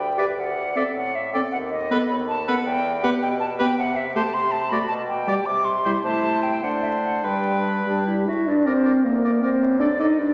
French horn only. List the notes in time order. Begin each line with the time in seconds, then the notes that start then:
0.18 G4
0.76 C4
1.35 C4
1.91 B3
2.48 B3
3.04 B3
3.60 B3
4.15 A3
4.72 A3
5.27 G3
5.85 G3
6.05 A3
6.63 A3
7.24 G3
7.86 G3
8.27 E4
8.47 D4
8.66 C4
9.04 A#3
9.41 C4
9.80 D4
9.99 D#4
10.19 D4